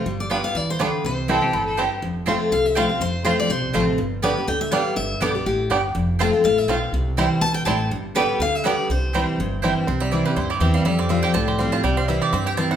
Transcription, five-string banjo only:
X:1
M:4/4
L:1/8
Q:"Swing" 1/4=245
K:C
V:1 name="Five-string banjo"
z2 [G,B,D] z3 [G,B,D] z | z2 [G,CE] z3 [G,CE] z | z2 [A,CF] z3 [A,CF] z | z2 [A,CF] z3 [A,CF] z |
z2 [G,B,D] z3 [G,B,D] z | z2 [G,B,D] z3 [G,B,D] z | z2 [A,CF] z3 [A,CF] z | z2 [G,CE] z3 [G,CE] z |
z2 [G,B,D] z3 [G,B,D] z | z2 [G,CE] z3 [G,CE] z | C G, E G E G, G G, | G, C F G C G C F |
G, C E G C G C E |]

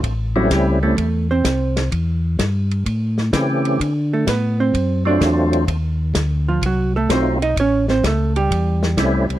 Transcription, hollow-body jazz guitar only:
X:1
M:4/4
L:1/8
Q:"Swing" 1/4=128
K:D
V:1 name="Hollow-body jazz guitar"
z [F,F] [G,G] [A,A]2 [^B,^B]3 | z8 | z [A,A] [B,B] [=C=c]2 [Dd]3 | z3 [=F,=F] [^F,^F] [A,A] [^B,^B] [^D^d] |
[Cc] [^B,^B] [A,A] [G,G]4- [G,G] |]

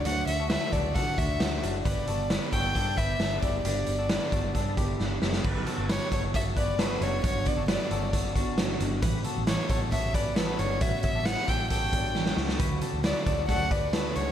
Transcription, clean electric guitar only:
X:1
M:4/4
L:1/16
Q:1/4=134
K:Glyd
V:1 name="Clean electric guitar"
[DF]3 [FA] [FB]2 [FA]2 [FA]2 [DF]4 [DF]2 | [GB]2 [FA]2 [GB]2 [FA]2 [DA]2 [GB]2 [DA]2 [EG]2 | [DG]3 [FA] [GB]2 [FA]2 [DA]2 [EG]4 [EG]2 | [GB]2 [FA]2 [GB]2 [FA]2 [FA]2 [GB]2 [FA]2 [DF]2 |
[DF]3 [FA] [GB]2 [FA]2 [FA]2 [DF]4 [DF]2 | [GB]2 [FA]2 [GB]2 [FA]2 [FA]2 [GB]2 [FA]2 [DF]2 | [CF]3 [FA] [GB]2 [FA]2 [FA]2 [F,D]4 [DF]2 | [FB]2 [FA]2 [FB]2 [FA]2 [FA]2 [GB]2 [FA]2 [DF]2 |]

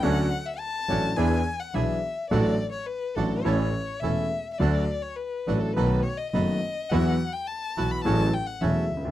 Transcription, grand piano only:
X:1
M:4/4
L:1/16
Q:1/4=105
K:D
V:1 name="Grand piano" clef=bass
[D,,D,F,CDA]2 z4 [A,,,A,,F,CDA]2 [E,,E,B,D^G]2 z2 [B,,,B,,E,B,DG]2 z2 | [A,,,A,,F,A,DA]2 z4 [A,,,A,,F,A,DA]2 [A,,,A,,E,A,CA]2 z2 [E,,,E,,E,A,CA]2 z2 | [D,,D,F,A,DA]2 z4 [A,,,A,,F,A,DA]2 [B,,,B,,^D,A,B,F]2 z2 [F,,,F,,D,A,B,F]2 z2 | [E,,E,F,B,F]2 z4 [B,,,B,,E,F,B,F]2 [A,,,A,,C,F,A,E]2 z2 [E,,,E,,C,F,A,E]2 z/2 C,,/2 D,,/2 z/2 |]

